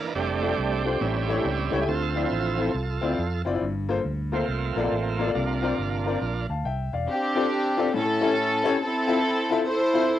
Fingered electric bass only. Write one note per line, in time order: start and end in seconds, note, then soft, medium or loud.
0.15 0.52 F1 medium
0.58 0.95 C2 medium
1.01 1.38 A1 medium
1.45 1.68 C#2 medium
1.73 1.86 C#2 medium
1.88 2.25 D2 medium
2.31 2.68 A1 medium
2.74 2.98 C2 loud
3.02 3.15 D2 medium
3.18 3.42 F2 medium
3.46 3.59 F#1 medium
3.61 3.98 G1 medium
4.05 4.42 D2 medium
4.48 4.72 C2 medium
4.76 4.89 A#1 medium
4.92 5.29 A1 medium
5.35 5.72 C2 medium
5.78 6.15 G1 medium
6.21 6.45 A#1 medium
6.49 6.62 D2 medium
6.65 6.88 C2 medium
6.93 7.06 E1 medium